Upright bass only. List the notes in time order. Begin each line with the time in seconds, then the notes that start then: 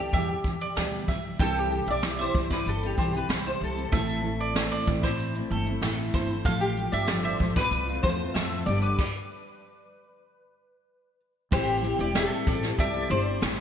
0.13 E2
0.44 E2
0.77 D2
1.08 C2
1.39 C2
1.87 B1
2.35 C2
2.66 G1
2.97 B1
3.29 C2
3.61 C2
3.93 A1
4.87 A1
5.50 G1
5.81 A1
6.14 G1
6.45 A1
6.93 G1
7.40 A1
7.71 C2
8.04 E2
8.35 F2
8.66 G1
11.52 A1
11.99 E1
12.47 A1
12.78 C2
13.10 G1
13.42 A1